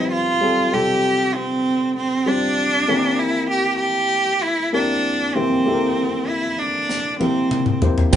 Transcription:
Already playing: upright piano C3 F3 G3 C4 F4 G4 B4 C5, cello E4
0.12 cello F4
0.41 upright piano G3 C4 F4 G4 A4
0.72 upright piano C3 G3 C4 F4 G4 A4, cello G4
1.35 cello C4
1.97 cello C4
2.26 upright piano G3 C4 F4 G4 C5, cello D4
2.88 upright piano E3 A#3 C4 E4 G4 A#4
3.19 cello E4
3.50 cello G4
3.79 cello G4
4.43 cello E4
4.73 upright piano A#3 C4 E4 G4 A#4, cello D4
5.35 upright piano E3 A#3 C4 E4 G4 C5, cello C4
5.66 upright piano A#3 C4 E4 G4 A4
5.74 upright piano A#4
6.28 cello E4
6.59 cello D4
6.89 snare
7.20 upright piano A#3 C4 E4 G4 A#4, cello C4, high tom
7.51 mid tom
7.66 mid tom
7.82 upright piano A#3 C4 E4 G4 C5, floor tom
7.98 floor tom
8.12 fm bass F1, upright piano C3 G3 C4 F4 G4, cello C4, steel-string acoustic guitar C4, kick, ride

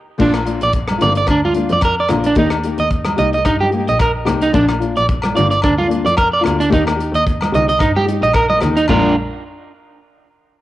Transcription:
0.18 double bass A#1, steel-string acoustic guitar F3 A#3 D4 F4, clean electric guitar D4, kick, crash
0.34 cross-stick, low agogo
0.45 steel-string acoustic guitar A#3 D4 F4, closed hi-hat
0.61 double bass A#1, clean electric guitar D5, closed hi-hat
0.72 kick, closed hi-hat
0.88 cross-stick, high conga, low agogo
0.98 double bass G1, steel-string acoustic guitar A#3 D4 F4, clean electric guitar D5, closed hi-hat
1.03 low conga
1.15 clean electric guitar D5, closed hi-hat
1.27 double bass D2, clean electric guitar D4, kick, cross-stick, closed hi-hat, low agogo
1.45 clean electric guitar F4, high conga
1.54 steel-string acoustic guitar A#3 D4 F4, closed hi-hat
1.69 double bass F2, clean electric guitar D5, closed hi-hat
1.81 clean electric guitar A#4, kick, cross-stick, closed hi-hat, low agogo
2.00 clean electric guitar D5
2.09 double bass A#1, steel-string acoustic guitar A#3 D4 F4, cross-stick, closed hi-hat, low conga, low agogo
2.24 clean electric guitar D4, closed hi-hat
2.35 double bass D#2, steel-string acoustic guitar D#3 A#3 D#4 G4, clean electric guitar D#4, kick, closed hi-hat
2.50 cross-stick, low agogo
2.63 steel-string acoustic guitar A#3 D#4 G4, closed hi-hat
2.78 double bass D#2, clean electric guitar D#5, closed hi-hat
2.90 kick, closed hi-hat
3.05 cross-stick, high conga, low agogo
3.17 double bass C2, steel-string acoustic guitar A#3 D#4 G4, clean electric guitar D#5, closed hi-hat
3.33 clean electric guitar D#5, closed hi-hat
3.45 double bass G2, clean electric guitar D#4, kick, cross-stick, closed hi-hat, low agogo
3.61 clean electric guitar G4, high conga
3.71 steel-string acoustic guitar A#3 G4, muted steel-string acoustic guitar stroke, closed hi-hat
3.88 double bass A#1, clean electric guitar D#5, closed hi-hat
3.99 clean electric guitar A#4, kick, cross-stick, closed hi-hat, low agogo
4.25 double bass C2, steel-string acoustic guitar A#3 D#4 G4, cross-stick, closed hi-hat, low conga, low agogo
4.41 clean electric guitar D#4, closed hi-hat
4.52 double bass A#1, steel-string acoustic guitar F3 A#3 D4 F4, clean electric guitar D4, kick, closed hi-hat
4.69 cross-stick, low agogo
4.80 steel-string acoustic guitar A#3 D4 F4, closed hi-hat
4.96 double bass A#1, clean electric guitar D5, closed hi-hat
5.09 kick, closed hi-hat
5.22 cross-stick, high conga, low agogo
5.34 double bass G1, steel-string acoustic guitar A#3 D4 F4, clean electric guitar D5, closed hi-hat, low conga
5.51 clean electric guitar D5, closed hi-hat
5.62 double bass D2, clean electric guitar D4, kick, cross-stick, closed hi-hat, low agogo
5.78 clean electric guitar F4, high conga
5.88 steel-string acoustic guitar A#3 D4 F4, closed hi-hat
6.05 double bass F2, clean electric guitar D5, closed hi-hat
6.17 clean electric guitar A#4, kick, cross-stick, closed hi-hat, low agogo
6.33 clean electric guitar D5
6.41 double bass D2, steel-string acoustic guitar A#3 D4 F4, low agogo
6.45 cross-stick, closed hi-hat, low conga
6.60 clean electric guitar D4, closed hi-hat
6.69 double bass D#2, steel-string acoustic guitar A#3 D#4 G4, kick, closed hi-hat
6.74 clean electric guitar D#4
6.87 cross-stick, low agogo
6.96 steel-string acoustic guitar D#4 G4, closed hi-hat
7.13 double bass D#2, clean electric guitar D#5, closed hi-hat
7.26 kick, closed hi-hat
7.41 cross-stick, high conga, low agogo
7.52 double bass C2, steel-string acoustic guitar D#4 G4, clean electric guitar D#5, closed hi-hat, low conga
7.69 clean electric guitar D#5, closed hi-hat
7.79 double bass G2, clean electric guitar D#4, kick, cross-stick, closed hi-hat, low agogo
7.96 clean electric guitar G4, high conga
8.06 steel-string acoustic guitar D#4 G4, closed hi-hat
8.22 double bass A#1, clean electric guitar D#5, closed hi-hat
8.34 clean electric guitar A#4, kick, cross-stick, closed hi-hat, low agogo
8.50 clean electric guitar D#5, high conga
8.61 double bass D#2, steel-string acoustic guitar D#4 G4, cross-stick, closed hi-hat, low conga, low agogo
8.77 clean electric guitar D#4, closed hi-hat
8.88 double bass A#1, steel-string acoustic guitar F3 A#3 D4, clean electric guitar D4 F4 A#4, kick, floor tom, high conga, low agogo

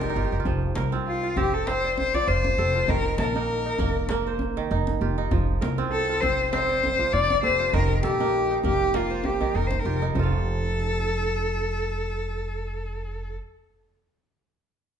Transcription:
Already playing: upright bass F1, kora D#3 A#3 D4 F4 A4 A#4 C5, cello A#4
0.01 kora G4, djembe slap, djembe tone
0.10 kora D#4
0.15 upright bass G1, kora F4 G4, djembe slap
0.25 kora G4
0.32 upright bass F1, kora G4
0.40 kora F4
0.45 upright bass F1, kora F3, djembe slap, djembe tone, djembe bass
0.62 djembe slap
0.75 upright bass C2, kora A#4, djembe slap
0.92 kora C4 F4, djembe tone
1.07 cello F4
1.23 kora F4
1.36 upright bass F1, kora C4, cello G4, djembe tone, djembe bass
1.54 cello A4, djembe slap
1.67 kora C4, cello C5, djembe slap
1.84 kora D5
1.98 cello C5, djembe tone
2.14 kora F3, cello D5, djembe slap, djembe bass
2.28 upright bass F1, kora F4, cello C5
2.44 djembe slap, djembe tone
2.58 upright bass F1, kora G4 A4, djembe slap
2.75 kora F4
2.88 upright bass F1, kora D#3, cello A#4, djembe slap, djembe tone, djembe bass
3.05 djembe slap
3.18 upright bass A#1, cello A#4, kora A5, djembe slap
3.34 kora A#3 D#4, djembe tone
3.66 kora D#4
3.79 upright bass F1, kora A#3, djembe tone, djembe bass
3.96 djembe slap
4.09 kora A#3, djembe slap
4.27 kora C5
4.39 djembe tone
4.56 kora D#3, djembe slap
4.71 upright bass F1, kora D#4
4.87 djembe slap, djembe tone
5.01 upright bass F1, kora F4 G4, djembe slap
5.18 kora D#4
5.31 upright bass F1, kora F3, djembe slap, djembe tone, djembe bass
5.48 djembe slap
5.61 upright bass C2, kora A#4, djembe slap
5.78 kora C4 F4, djembe tone
5.92 cello A4
6.09 kora F4
6.21 upright bass F1, kora C4, cello C5, djembe tone, djembe bass
6.40 djembe slap
6.51 kora C4, cello C5, djembe slap
6.69 kora D5
6.83 djembe tone
6.99 kora F3, djembe slap, djembe bass
7.13 upright bass F1, kora F4, cello D5
7.30 djembe slap, djembe tone
7.43 upright bass F1, kora G4 A4, cello C5, djembe slap
7.60 kora F4
7.73 upright bass F1, kora D#3, cello A#4, djembe tone, djembe bass
8.03 upright bass A#1, cello G4, kora A4, djembe slap
8.20 kora A#3 D#4, djembe slap, djembe tone
8.51 kora D#4, djembe slap
8.64 upright bass F1, kora A#3, cello G4, djembe slap, djembe tone, djembe bass
8.94 kora A#3, cello F4, djembe slap
9.10 kora C5
9.24 cello G4, djembe tone
9.41 kora D#3, djembe bass
9.55 upright bass F1, kora D#4, cello A#4
9.67 cello C5, djembe slap, djembe tone
9.80 cello A#4
9.85 upright bass F1, kora F4 G4, djembe slap
10.02 kora D#4, djembe slap
10.15 upright bass F1, kora F3, cello A4, djembe bass
10.19 kora F4
10.23 kora F5

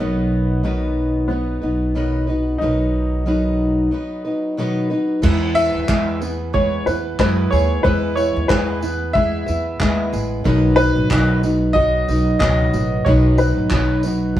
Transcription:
Already playing: upright piano B3
0.00 upright bass B1, steel-string acoustic guitar B2 D#3 F#3 B3 D#4 B4
0.63 steel-string acoustic guitar B2 D#3 F#3 B3 D#4 B4
1.28 steel-string acoustic guitar F#3 B3 D#4, upright piano B3
1.32 steel-string acoustic guitar B4
1.61 upright bass B1, steel-string acoustic guitar F#3 B3 D#4 B4
1.95 steel-string acoustic guitar B2 D#3 F#3 B3 D#4 B4
2.27 steel-string acoustic guitar F#3 B3 D#4 B4
2.58 upright bass B1, steel-string acoustic guitar B2 D#3 F#3 B3, upright piano D#4
2.63 steel-string acoustic guitar D#4 B4
3.26 steel-string acoustic guitar B2 D#3 F#3 B3 D#4 B4
3.91 steel-string acoustic guitar F#3 B3 D#4 B4
4.25 steel-string acoustic guitar F#3 B3 D#4 B4
4.57 steel-string acoustic guitar B2 D#3 F#3 B3 D#4 B4
4.90 steel-string acoustic guitar F#3 B3 D#4 B4
5.22 upright bass E2, steel-string acoustic guitar E3 G#3 B3 E4 B4, nylon-string guitar E3, kick, crash
5.55 nylon-string guitar E4, upright piano E5, tambourine
5.75 upright bass D#2
5.88 upright bass E2, steel-string acoustic guitar E3 G#3 B3 E4 B4, nylon-string guitar G#4, kick, clap
6.21 nylon-string guitar B3, steel-string acoustic guitar B3 E4 B4, tambourine
6.53 steel-string acoustic guitar G#3 B3 E4 B4, nylon-string guitar G#4, upright piano C#5, kick
6.86 upright bass E2, steel-string acoustic guitar B3 E4 B4, nylon-string guitar E4, upright piano B4, tambourine
7.19 upright bass F#2, steel-string acoustic guitar G#3 B3 E4 B4, nylon-string guitar B3, upright piano B4, kick, clap
7.51 upright bass D#2, nylon-string guitar G#4, upright piano C#5, tambourine
7.83 upright bass E2, steel-string acoustic guitar E3 G#3 B3 E4 B4, upright piano B4, kick
8.16 nylon-string guitar E4, upright piano C#5, tambourine
8.36 upright bass D#2
8.48 upright bass E2, steel-string acoustic guitar E3 G#3 B3 E4 B4, nylon-string guitar G#4, upright piano B4, kick, clap
8.81 nylon-string guitar B3, steel-string acoustic guitar B3 E4 B4, tambourine
9.13 steel-string acoustic guitar G#3 B3 E4, nylon-string guitar G#4, upright piano E5, kick
9.18 steel-string acoustic guitar B4
9.46 upright bass E2, steel-string acoustic guitar B3 E4 B4, nylon-string guitar E4, tambourine
9.80 upright bass D#2, steel-string acoustic guitar G#3 B3 E4 B4, nylon-string guitar B3, kick, clap
10.13 upright bass A1, nylon-string guitar G#4, tambourine
10.44 upright bass B1, steel-string acoustic guitar B2 D#3 F#3 B3 D#4 B4, nylon-string guitar F#3, kick
10.76 nylon-string guitar D#4, upright piano B4, tambourine
10.96 upright bass A1
11.10 upright bass B1, steel-string acoustic guitar B2 D#3 F#3 B3 D#4 B4, nylon-string guitar F#4, kick, clap
11.43 steel-string acoustic guitar F#3 B3 D#4 B4, nylon-string guitar B3, tambourine
11.73 steel-string acoustic guitar F#3, nylon-string guitar F#4, upright piano D#5, kick
11.77 steel-string acoustic guitar B3 D#4 B4
12.08 upright bass B1, steel-string acoustic guitar B3 D#4 B4, nylon-string guitar D#4, tambourine
12.12 steel-string acoustic guitar F#3
12.39 upright bass C#2, steel-string acoustic guitar B2 D#3 F#3 B3 D#4 B4, nylon-string guitar B3, upright piano D#5, kick, clap
12.73 upright bass A1, nylon-string guitar F#4, tambourine
13.05 upright bass B1, steel-string acoustic guitar B2 D#3 F#3 B3 D#4 B4, nylon-string guitar F#3, upright piano C#5, kick
13.38 nylon-string guitar D#4, upright piano B4, tambourine
13.57 upright bass A1
13.70 upright bass B1, steel-string acoustic guitar B2 D#3 F#3 B3 D#4 B4, nylon-string guitar F#4, kick, clap
14.03 nylon-string guitar B3, steel-string acoustic guitar B3 D#4 B4, tambourine
14.07 steel-string acoustic guitar F#3
14.36 steel-string acoustic guitar F#3, nylon-string guitar F#4, kick

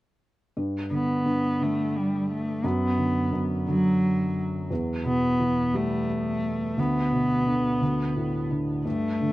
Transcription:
0.57 felt piano G2
0.91 felt piano D3, cello B3
1.26 felt piano G2
1.60 felt piano D3, cello A3
1.97 cello G3
2.31 cello A3
2.64 felt piano F#2, cello B3
2.98 felt piano D3
3.33 felt piano F#2
3.67 felt piano D3, cello F#3
4.71 felt piano E2
5.05 felt piano B2, cello B3
5.40 felt piano E3
5.74 felt piano G3, cello A3
6.77 felt piano D2, cello B3
7.12 felt piano B2
7.47 felt piano D3
7.81 felt piano D2
8.16 felt piano A2
8.50 felt piano D3
8.85 felt piano G2, cello A3
9.21 felt piano D3

